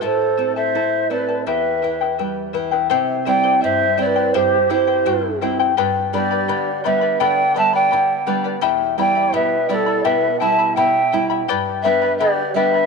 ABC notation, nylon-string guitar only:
X:1
M:2/4
L:1/8
Q:1/4=84
K:Clyd
V:1 name="Nylon-string guitar" clef=bass
A,, C E C | E,, E, G, E, | C, [G,CE] G,, [G,CE] | G,, [G,CE] G,, [G,CE] |
G,, [G,B,D] D, [G,B,D] | D, [G,B,D] D, [G,B,D] | E,, [G,B,E] B,, [G,B,E] | B,, [G,B,E] B,, [G,B,E] |
G,, [G,B,D] D, [G,B,D] |]